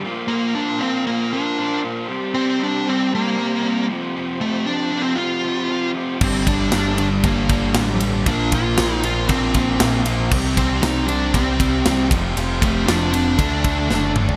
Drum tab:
CC |----------------|----------------|----------------|x---------------|
RD |----------------|----------------|----------------|--x-x-x-x-x-x-x-|
SD |----------------|----------------|----------------|----o-------o---|
T2 |----------------|----------------|----------------|----------------|
FT |----------------|----------------|----------------|----------------|
BD |----------------|----------------|----------------|o-o-----o-o-----|

CC |----------------|x---------------|----------------|
RD |x-x-x-x-x-x-x-x-|--x-x-x-x-x-x-x-|x-x-x-x-x-x-----|
SD |----o-------o---|----o-------o---|----o-------o---|
T2 |----------------|----------------|--------------o-|
FT |----------------|----------------|---------------o|
BD |o-o-----o-o-----|o-o-----o-o---o-|--o-----o-o-----|